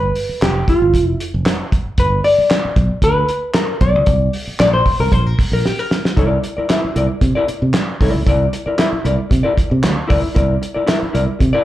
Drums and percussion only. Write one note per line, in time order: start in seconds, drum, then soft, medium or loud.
0.15 open hi-hat medium
0.42 snare loud
0.42 clap medium
0.42 closed hi-hat medium
0.68 kick medium
0.68 closed hi-hat medium
0.94 kick medium
0.94 closed hi-hat medium
1.20 closed hi-hat medium
1.46 snare loud
1.46 clap medium
1.46 closed hi-hat medium
1.72 kick loud
1.72 closed hi-hat medium
1.98 kick loud
1.98 closed hi-hat medium
2.24 open hi-hat medium
2.50 snare loud
2.50 clap medium
2.50 closed hi-hat medium
2.76 kick medium
2.76 closed hi-hat medium
3.02 kick medium
3.02 closed hi-hat loud
3.29 closed hi-hat medium
3.54 snare loud
3.54 clap medium
3.54 closed hi-hat medium
3.81 kick medium
3.81 closed hi-hat medium
4.06 kick loud
4.06 closed hi-hat medium
4.33 open hi-hat medium
4.59 snare loud
4.59 clap loud
4.59 closed hi-hat medium
4.86 kick medium
4.86 open hi-hat medium
5.12 kick medium
5.12 closed hi-hat medium
5.39 kick medium
5.39 open hi-hat medium
5.66 snare medium
5.91 snare medium
6.05 snare medium
6.17 kick loud
6.17 closed hi-hat medium
6.44 closed hi-hat medium
6.69 snare loud
6.69 clap medium
6.69 closed hi-hat medium
6.96 closed hi-hat medium
7.21 kick loud
7.21 closed hi-hat medium
7.48 closed hi-hat medium
7.74 snare loud
7.74 clap medium
7.74 closed hi-hat loud
8.01 kick medium
8.01 open hi-hat medium
8.27 kick loud
8.27 closed hi-hat medium
8.53 closed hi-hat medium
8.78 snare loud
8.78 clap medium
8.78 closed hi-hat medium
9.05 closed hi-hat medium
9.31 kick loud
9.31 closed hi-hat medium
9.58 kick medium
9.58 closed hi-hat medium
9.84 snare medium
9.84 clap medium
9.84 closed hi-hat medium
10.10 kick medium
10.10 open hi-hat medium
10.36 kick loud
10.36 closed hi-hat loud
10.63 closed hi-hat medium
10.88 snare loud
10.88 clap medium
10.88 closed hi-hat medium
11.15 closed hi-hat medium
11.40 kick medium
11.40 closed hi-hat medium